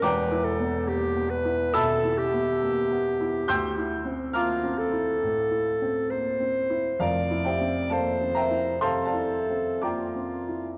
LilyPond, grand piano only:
\new Staff \with { instrumentName = "Grand piano" } { \time 4/4 \key f \major \tempo 4 = 68 << { <d'' g'' bes'' d'''>2 <e'' a'' b'' e'''>2 | <g'' c''' e''' g'''>4 <f'' bes'' d''' f'''>2. | <f' bes' d'' f''>8 <g' c'' e'' g''>8 <a' d'' f'' a''>8 <bes' e'' g'' bes''>8 <c'' f'' a'' c'''>16 <a' d'' f'' a''>8. <d'' g'' bes'' d'''>4 | } \\ { \tuplet 3/2 { <e,, e,>8 e'8 b8 bes8 b8 e'8 b,8 e'8 b8 bes8 b8 e'8 } | \tuplet 3/2 { d,8 e'8 c'8 bes8 c'8 e'8 a,8 e'8 c'8 bes8 c'8 e'8 } | \tuplet 3/2 { <f,, f,>8 e'8 c'8 bes8 c'8 e'8 c8 e'8 c'8 bes8 c'8 e'8 } | } >> }